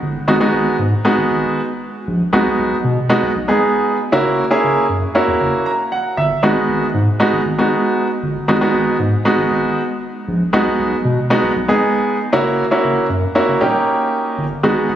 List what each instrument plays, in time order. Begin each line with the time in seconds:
0.02 sub bass G1
0.28 sub bass G#1, grand piano G#3 B3 D#4 F#4
0.40 grand piano G#3 B3 D#4 F#4
0.53 sub bass G#1
0.79 sub bass G#2
1.05 grand piano G#3 B3 D#4 F#4
1.18 sub bass G#1
1.30 sub bass G#1
2.07 sub bass A#1
2.33 sub bass B1, grand piano G#3 B3 D#4 F#4
2.59 sub bass B1
2.84 sub bass B2
3.09 grand piano G#3 B3 D#4 F#4
3.23 sub bass B1
3.36 sub bass B1
3.48 grand piano G#3 B3 D#4 G#4
4.12 sub bass F#1, grand piano A#3 C#4 E4 F#4
4.51 grand piano A#3 C#4 E4 G#4
4.64 sub bass F#1
4.89 sub bass F#2
5.15 grand piano A#3 C#4 E4 F#4
5.28 sub bass E2
5.40 sub bass F#1
5.66 grand piano A#5
5.92 grand piano F#5
6.17 sub bass G1, grand piano E5
6.43 sub bass G#1, grand piano G#3 B3 D#4 F#4
6.69 sub bass G#1
6.94 sub bass G#2
7.20 grand piano G#3 B3 D#4 F#4
7.33 sub bass G#1
7.45 sub bass G#1
7.58 grand piano G#3 B3 D#4 F#4
8.23 sub bass G1
8.48 sub bass G#1, grand piano G#3 B3 D#4 F#4
8.61 grand piano G#3 B3 D#4 F#4
8.74 sub bass G#1
8.99 sub bass G#2
9.25 grand piano G#3 B3 D#4 F#4
9.38 sub bass G#1
9.51 sub bass G#1
10.28 sub bass A#1
10.53 sub bass B1, grand piano G#3 B3 D#4 F#4
10.79 sub bass B1
11.05 sub bass B2
11.30 grand piano G#3 B3 D#4 F#4
11.43 sub bass B1
11.56 sub bass B1
11.68 grand piano G#3 B3 D#4 G#4
12.33 sub bass F#1, grand piano A#3 C#4 E4 F#4
12.71 grand piano A#3 C#4 E4 F#4
12.84 sub bass F#1
13.09 sub bass F#2
13.35 grand piano A#3 C#4 E4 F#4
13.48 sub bass F#1
13.61 sub bass D#1, grand piano A#3 C#4 D#4 G4
14.38 sub bass G1
14.63 sub bass G#1, grand piano G#3 B3 D#4 F#4, synth arpeggio sound G#4
14.76 synth arpeggio sound G#4
14.89 sub bass G#1, synth arpeggio sound F#5